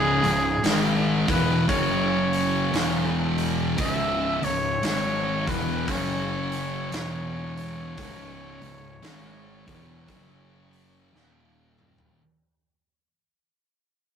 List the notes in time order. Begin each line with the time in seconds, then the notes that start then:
Already playing: C#1 C#2 G#2 C#3 G#4
0.23 C#1 C#2 G#2, open hi-hat
0.63 G#1 G#2 D#3 G#3, snare, open hi-hat
1.28 E1 E2 B2 E3 B4, kick, open hi-hat
1.69 F#1 F#2 C#3 F#3 C#5, kick, open hi-hat
2.33 open hi-hat
2.72 E1 E2 B2 E3, snare, open hi-hat
3.38 open hi-hat
3.78 C#1 C#2 G#2 C#3 E5, kick, open hi-hat
4.42 C#1 C#2 G#2 C#5, open hi-hat
4.82 G#1 G#2 D#3 G#3, snare, open hi-hat
5.47 E1 E2 B2 E3 B4, kick, open hi-hat
5.87 F#1 F#2 C#3 F#3 C#5, kick, open hi-hat
6.52 open hi-hat
6.92 E1 E2 B2 E3, snare, open hi-hat
7.57 open hi-hat
7.97 C#1 C#2 G#2 C#3, kick, open hi-hat
8.62 C#1 C#2 G#2, open hi-hat
9.02 G#1 G#2 D#3 G#3, snare, open hi-hat
9.67 E1 E2 B2 E3, kick, open hi-hat
10.08 F#1 F#2 C#3 F#3, kick, open hi-hat
10.73 open hi-hat
11.13 D#1 D#2 A#2 D#3, snare
11.79 mid tom
11.98 floor tom